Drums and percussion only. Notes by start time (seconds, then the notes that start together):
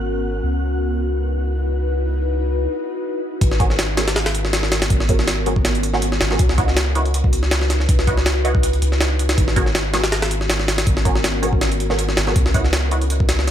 3.41 kick, closed hi-hat
3.51 snare
3.60 kick, closed hi-hat
3.70 snare
3.79 snare, closed hi-hat
3.97 snare, closed hi-hat
4.08 snare, closed hi-hat
4.16 snare, closed hi-hat
4.26 snare, closed hi-hat
4.35 closed hi-hat
4.45 snare
4.53 snare, closed hi-hat
4.63 snare
4.72 snare, closed hi-hat
4.82 snare, closed hi-hat
4.90 kick, closed hi-hat
5.00 snare
5.09 kick, closed hi-hat
5.19 snare
5.28 snare, closed hi-hat
5.46 closed hi-hat
5.56 kick
5.65 snare, closed hi-hat
5.75 closed hi-hat
5.83 closed hi-hat
5.94 snare
6.02 closed hi-hat
6.12 snare
6.21 snare, closed hi-hat
6.31 snare
6.39 kick, closed hi-hat
6.49 snare
6.58 kick, closed hi-hat
6.68 snare
6.77 snare, closed hi-hat
6.95 closed hi-hat
7.06 closed hi-hat
7.14 closed hi-hat
7.24 kick
7.33 closed hi-hat
7.43 snare
7.51 snare, closed hi-hat
7.62 snare
7.70 snare, closed hi-hat
7.80 snare
7.89 kick, closed hi-hat
7.99 snare
8.07 kick, closed hi-hat
8.17 snare
8.26 snare, closed hi-hat
8.45 closed hi-hat
8.55 kick
8.63 closed hi-hat
8.73 closed hi-hat
8.82 closed hi-hat
8.92 snare
9.01 snare, closed hi-hat
9.19 closed hi-hat
9.29 snare, closed hi-hat
9.38 kick, closed hi-hat
9.48 snare
9.56 kick, closed hi-hat
9.66 snare
9.75 snare, closed hi-hat
9.94 snare, closed hi-hat
10.04 snare, closed hi-hat
10.12 snare, closed hi-hat
10.22 snare, closed hi-hat
10.31 closed hi-hat
10.41 snare
10.50 snare, closed hi-hat
10.60 snare
10.68 snare, closed hi-hat
10.78 snare, closed hi-hat
10.87 kick, closed hi-hat
10.97 snare
11.05 kick, closed hi-hat
11.15 snare
11.24 snare, closed hi-hat
11.43 closed hi-hat
11.53 kick
11.61 snare, closed hi-hat
11.72 closed hi-hat
11.80 closed hi-hat
11.90 snare
11.99 closed hi-hat
12.09 snare
12.17 snare, closed hi-hat
12.27 snare
12.36 kick, closed hi-hat
12.46 snare
12.54 kick, closed hi-hat
12.64 snare
12.73 snare, closed hi-hat
12.91 closed hi-hat
13.01 closed hi-hat
13.10 closed hi-hat
13.20 kick
13.29 snare, closed hi-hat
13.39 snare
13.47 snare, closed hi-hat